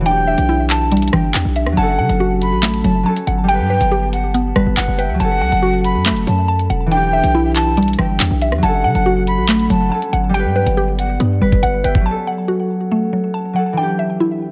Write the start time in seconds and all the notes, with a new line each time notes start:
Already playing: E1 F#3 C#4 A4
0.01 E3
0.06 D4 G4 E5 G5, closed hi-hat
0.11 G4
0.27 E5
0.38 B1, closed hi-hat
0.49 E4
0.70 A5, clap, closed hi-hat
0.91 G3, closed hi-hat
0.97 closed hi-hat
1.02 closed hi-hat
1.08 closed hi-hat
1.13 G1 E3 G5, cross-stick
1.34 E2 G5, clap, closed hi-hat
1.45 B1
1.56 E5, closed hi-hat
1.66 E2, cross-stick
1.72 F#3
1.77 F#1 C#4 A4 F#5 A5, closed hi-hat
1.82 A4
1.99 C#3 F#5
2.09 F#1, closed hi-hat
2.20 F#4
2.42 B5, closed hi-hat
2.52 A1
2.63 A3, clap, closed hi-hat
2.74 closed hi-hat
2.84 F#1 F#3 A5, closed hi-hat
3.03 F#3 C#4 A5
3.08 A4
3.17 closed hi-hat
3.27 G1 F#5, closed hi-hat
3.44 G3
3.48 B3 G4 G5, closed hi-hat
3.54 B4
3.59 G2
3.70 B4
3.81 G1, closed hi-hat
3.92 G4
4.13 F#5, closed hi-hat
4.34 B3, closed hi-hat
4.56 G1 G3 B4, cross-stick
4.66 G1
4.77 G1 F#5, clap, closed hi-hat
4.88 F#1
4.98 B4 E5 G5, closed hi-hat
5.09 D2
5.14 F#3
5.19 F#1 C#4 A4 F#5 A5, closed hi-hat
5.25 A4
5.41 C#2 F#5
5.52 F#1, closed hi-hat
5.62 F#4
5.84 B5, closed hi-hat
5.95 F#2
6.06 A3, clap, closed hi-hat
6.11 F#1
6.17 closed hi-hat
6.27 F#2 F#3 A5, closed hi-hat
6.48 A5
6.59 closed hi-hat
6.70 E1 F#5, closed hi-hat
6.86 E3
6.91 D4 G4 E5 G5, closed hi-hat
6.97 G4
7.13 E5
7.24 B1, closed hi-hat
7.35 E4
7.56 A5, clap, closed hi-hat
7.77 G3, closed hi-hat
7.83 closed hi-hat
7.88 closed hi-hat
7.93 closed hi-hat
7.99 G1 E3 G5, cross-stick
8.20 E2 G5, clap, closed hi-hat
8.31 B1
8.41 E5, closed hi-hat
8.52 E2, cross-stick
8.58 F#3
8.63 F#1 C#4 A4 F#5 A5, closed hi-hat
8.68 A4
8.84 C#3 F#5
8.95 F#1, closed hi-hat
9.06 F#4
9.27 B5, closed hi-hat
9.38 A1
9.48 A3, clap, closed hi-hat
9.59 closed hi-hat
9.70 F#1 F#3 A5, closed hi-hat
9.89 F#3 C#4 A5
9.94 A4
10.02 closed hi-hat
10.13 G1 F#5, closed hi-hat
10.29 G3
10.34 B3 G4 D5 G5, closed hi-hat
10.40 B4
10.45 G2
10.56 B4
10.66 G1, closed hi-hat
10.77 G4
10.99 F#5, closed hi-hat
11.20 G2 B3, closed hi-hat
11.41 G1 G3 B4
11.52 kick
11.63 G1 F#5, closed hi-hat
11.84 G1 B4 E5 G5, closed hi-hat
11.95 kick
12.01 F#3
12.06 C#4 A4 F#5 A5
12.11 A4
12.27 F#5
12.48 F#4
12.92 A3
13.13 F#3
13.34 A5
13.53 F#3 C#4 F#5
13.58 A4
13.73 E3
13.77 D4 G4 E5 G5
13.83 G4
13.99 E5
14.20 E4